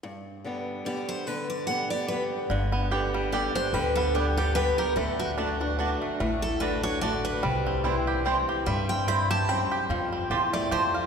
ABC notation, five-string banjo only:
X:1
M:3/4
L:1/8
Q:"Swing" 1/4=146
K:G
V:1 name="Five-string banjo"
z6 | z6 | D, B, G G, G D | G, B, D G B, G |
A, D D D D A, | A,2 D D D D | G, C E G C G | G, C E G C G |
=F, C G A, G =F |]